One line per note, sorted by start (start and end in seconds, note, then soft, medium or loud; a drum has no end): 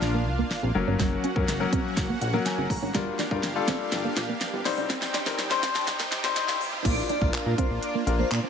0.00 0.28 A#1 medium
0.00 0.23 F3 medium
0.00 0.23 A#3 medium
0.00 4.61 A#3 medium
0.00 0.23 D4 medium
0.00 0.73 D4 medium
0.00 0.73 F4 medium
0.00 0.23 A#4 loud
0.00 0.73 F5 medium
0.00 snare medium
0.00 impact medium
0.00 riser medium
0.14 0.21 A#3 medium
0.26 0.43 C2 medium
0.26 muted clean electric guitar stroke soft
0.38 0.45 A#3 medium
0.51 snare medium
0.63 0.72 A#1 loud
0.63 0.70 C4 medium
0.75 0.84 F#1 loud
0.75 1.24 F#3 medium
0.75 1.24 A#3 medium
0.75 1.24 C#4 medium
0.75 2.92 C#4 medium
0.75 2.92 F#4 medium
0.75 1.24 A#4 loud
0.75 2.92 F#5 medium
0.75 muted clean electric guitar stroke soft
0.87 0.96 G1 medium
0.87 0.94 C#4 medium
0.99 1.17 F#1 loud
0.99 1.06 F#3 medium
0.99 kick loud
0.99 snare medium
0.99 closed hi-hat medium
1.12 muted clean electric guitar stroke soft
1.24 1.31 C#4 medium
1.24 closed hi-hat medium
1.36 1.45 F#2 loud
1.36 1.50 F#3 medium
1.36 1.50 A#3 medium
1.36 1.51 C#4 medium
1.36 1.51 A#4 loud
1.36 kick loud
1.48 1.65 F#1 loud
1.48 snare medium
1.48 closed hi-hat loud
1.60 2.04 F#3 medium
1.60 2.04 A#3 medium
1.60 2.04 C#4 medium
1.60 2.04 A#4 loud
1.73 1.80 C4 medium
1.73 kick loud
1.73 closed hi-hat medium
1.97 2.14 F#1 medium
1.97 kick loud
1.97 snare medium
1.97 closed hi-hat medium
2.09 2.16 A#3 medium
2.21 2.39 A#1 loud
2.21 2.44 F#5 medium
2.21 muted clean electric guitar stroke soft
2.21 closed hi-hat medium
2.33 2.70 F#3 medium
2.33 2.70 A#3 medium
2.33 2.41 A#3 medium
2.33 2.70 C#4 medium
2.33 2.70 A#4 loud
2.46 2.69 G#5 medium
2.46 snare medium
2.46 closed hi-hat loud
2.58 2.67 F#1 medium
2.58 2.65 C4 medium
2.70 2.79 A1 medium
2.70 2.93 A#5 medium
2.70 muted clean electric guitar stroke soft
2.70 kick medium
2.70 open hi-hat medium
2.82 2.91 G#1 medium
2.82 2.89 C#4 medium
2.94 3.12 G1 loud
2.94 3.16 G3 medium
2.94 3.02 G3 loud
2.94 3.16 D4 medium
2.94 4.64 D4 medium
2.94 3.16 F4 medium
2.94 4.64 G4 medium
2.94 3.16 A#4 loud
2.94 4.64 F5 medium
2.94 kick loud
2.94 snare medium
2.94 closed hi-hat medium
3.07 muted clean electric guitar stroke soft
3.19 3.26 D4 medium
3.19 snare medium
3.19 closed hi-hat medium
3.31 3.40 G2 loud
3.31 3.46 G3 medium
3.31 3.46 D4 medium
3.31 3.46 F4 medium
3.31 3.46 A#4 loud
3.31 kick loud
3.43 3.61 G1 loud
3.43 snare medium
3.43 closed hi-hat loud
3.55 4.13 G3 loud
3.55 4.13 D4 medium
3.55 4.14 F4 medium
3.55 4.14 A4 loud
3.68 3.75 C4 medium
3.68 kick loud
3.68 snare loud
3.68 closed hi-hat medium
3.92 4.09 G1 medium
3.92 snare loud
3.92 closed hi-hat medium
4.04 4.11 A#3 medium
4.17 4.34 A#1 medium
4.17 muted clean electric guitar stroke soft
4.17 snare loud
4.17 closed hi-hat medium
4.29 4.36 A#3 medium
4.41 snare loud
4.41 closed hi-hat loud
4.53 4.62 G1 medium
4.53 4.60 C4 medium
4.65 4.74 C2 loud
4.65 5.14 G3 loud
4.65 5.14 C4 medium
4.65 5.14 D#4 medium
4.65 6.83 D#4 medium
4.65 6.83 G4 medium
4.65 6.83 C5 medium
4.65 5.14 C5 loud
4.65 6.83 G5 medium
4.65 muted clean electric guitar stroke soft
4.65 snare loud
4.65 open hi-hat medium
4.78 4.86 C#2 medium
4.78 4.85 D4 medium
4.90 5.07 C2 loud
4.90 4.97 C4 medium
4.90 kick loud
4.90 snare loud
4.90 closed hi-hat medium
5.02 muted clean electric guitar stroke soft
5.02 snare loud
5.14 5.21 D4 medium
5.14 snare loud
5.14 closed hi-hat medium
5.26 5.35 C3 medium
5.26 5.41 G3 medium
5.26 5.41 C4 medium
5.26 5.41 D#4 medium
5.26 5.41 A#4 loud
5.26 kick loud
5.26 snare loud
5.39 5.56 C2 medium
5.39 snare loud
5.39 closed hi-hat loud
5.51 5.94 G3 loud
5.51 5.94 C4 medium
5.51 5.94 D#4 medium
5.51 5.94 C5 loud
5.51 snare loud
5.63 5.70 C4 medium
5.63 5.74 C6 medium
5.63 kick loud
5.63 snare loud
5.63 closed hi-hat medium
5.75 5.86 A5 medium
5.75 snare loud
5.87 6.05 C2 medium
5.87 6.33 G5 medium
5.87 kick loud
5.87 snare loud
5.87 closed hi-hat medium
6.00 6.06 A#3 medium
6.00 snare loud
6.12 6.17 D2 medium
6.12 snare loud
6.12 closed hi-hat medium
6.24 6.41 D2 medium
6.24 6.60 G3 medium
6.24 6.60 C4 medium
6.24 6.31 C4 medium
6.24 6.60 D#4 medium
6.24 6.60 C5 loud
6.24 snare loud
6.36 6.82 D#5 medium
6.36 snare loud
6.36 closed hi-hat loud
6.48 6.57 C2 loud
6.48 6.55 D4 medium
6.48 snare loud
6.61 6.78 B1 loud
6.61 muted clean electric guitar stroke soft
6.61 open hi-hat medium
6.73 6.80 C4 medium
6.85 7.02 A#1 loud
6.85 6.92 A#3 loud
6.85 8.49 A#3 medium
6.85 7.06 D4 medium
6.85 8.49 D4 medium
6.85 7.07 F4 medium
6.85 8.49 F4 medium
6.85 7.07 A#4 medium
6.85 7.01 D5 loud
6.85 kick loud
6.85 closed hi-hat medium
6.85 crash loud
6.97 muted clean electric guitar stroke soft
7.09 7.16 D4 medium
7.09 7.26 D5 medium
7.09 closed hi-hat medium
7.21 7.30 A#1 loud
7.21 7.43 D4 medium
7.21 7.43 F4 medium
7.21 7.43 A#4 medium
7.21 kick loud
7.34 7.39 A#2 medium
7.34 7.50 A#4 medium
7.34 clap loud
7.34 closed hi-hat loud
7.46 7.55 A#2 loud
7.58 7.65 C4 medium
7.58 7.87 D4 medium
7.58 7.87 F4 medium
7.58 7.87 A#4 medium
7.58 7.66 C5 medium
7.58 kick loud
7.58 closed hi-hat medium
7.70 7.79 A#1 medium
7.83 7.91 D5 medium
7.83 closed hi-hat medium
7.95 8.02 A#3 medium
8.06 8.24 A#1 loud
8.06 8.36 D4 medium
8.06 8.36 F4 medium
8.06 8.36 A#4 medium
8.06 muted clean electric guitar stroke soft
8.06 closed hi-hat medium
8.19 8.26 A#3 medium
8.19 8.27 C5 medium
8.31 8.40 A#2 loud
8.31 clap loud
8.31 closed hi-hat loud
8.43 8.49 C4 medium